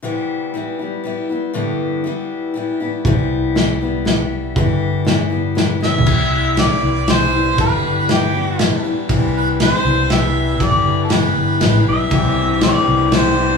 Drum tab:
CC |------------------|------------------|------------------|------------------|
RD |------------------|------------------|------------------|------------------|
SD |------------------|------------------|------o-----o-----|------o-----o--o--|
FT |------------------|------------------|------------------|-----------------o|
BD |------------------|------------------|o-----------------|o-----------------|

CC |x-----------------|------------------|------------------|------------------|
RD |------x-----x-----|x-----x-----x-----|x-----x-----x-----|x-----x-----x-----|
SD |------o-----o-----|------o-----o-----|------o-----o-----|------o-----o-----|
FT |------------------|------------------|------------------|------------------|
BD |o-----------------|o-----------------|o-----------------|o-----------------|

CC |------------------|
RD |x-----x-----x-----|
SD |------o-----o-----|
FT |------------------|
BD |o-----------------|